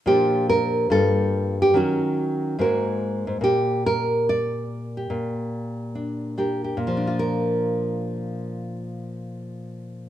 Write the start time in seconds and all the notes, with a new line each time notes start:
0.06 A#2 F3 D4 F4 G4
0.49 A#4
0.90 G2 G3 A#3 F4 A4
1.62 G4
1.74 D#3 F#3 C#4 F#4
2.59 G#2 G#3 A#3 F#4 A#4
3.27 G#2
3.41 A#2 G4
3.86 A#4
4.29 D5
4.97 G4
5.10 A#2
5.95 D4
6.38 D4 G4 A#4
6.64 G4
6.77 A#2
6.87 F3
6.97 D4
7.07 F4
7.19 A#4